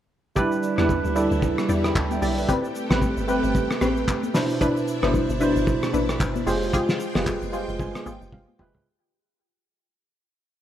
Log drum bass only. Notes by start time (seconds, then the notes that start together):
0.78 E2
1.05 D2
1.31 D2
1.69 E2
1.95 D2
2.22 B1
2.91 A1
3.17 G1
3.44 G1
3.81 A1
5.03 G1
5.30 G1
5.56 G1
5.94 A1
6.20 G1
6.47 F1
7.15 F1
7.42 F1
7.69 F1
7.80 G1
8.06 G#1
8.22 F1
8.32 G1
8.59 F1